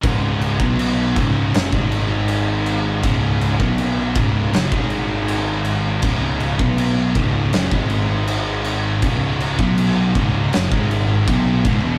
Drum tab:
CC |x-x-x-x-x-x-x-x-|x-x-x-x-x-x-x-x-|x-x-x-x-x-x-x-x-|x-x-x-x-x-x-x-x-|
SD |--------o-------|--------o-------|--------o-------|--------o-------|
BD |o--o--o--o------|o--o--o--o------|o--o--o--o------|o--o--o--o--o-o-|